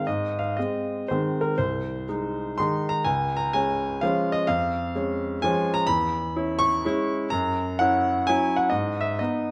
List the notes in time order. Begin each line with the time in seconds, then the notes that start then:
0.07 G#2 D#5
0.39 F5
0.57 G#3 C4 D#5
1.08 D#3 G#3 C4 C5
1.41 A#4
1.58 C2 C5
2.09 G#3 D#4
2.58 D#3 G#3 D#4 C6
2.89 A#5
3.04 C#2 G#5
3.37 A#5
3.53 G#3 C#4 G#5
4.01 F3 G#3 C#4 F5
4.32 D#5
4.47 F2 F5
4.95 G#3 C#4
5.42 F3 G#3 C#4 G#5
5.74 A#5
5.87 E2 B5
6.36 C#4 E4
6.59 C#6
6.85 G#3 C#4 E4
7.30 F#2 A#5
7.79 C#4 E4 F#5
8.27 F#3 C#4 E4 G#5
8.56 F#5
8.70 G#2 D#5
9.01 E5
9.19 B3 D#4 D#5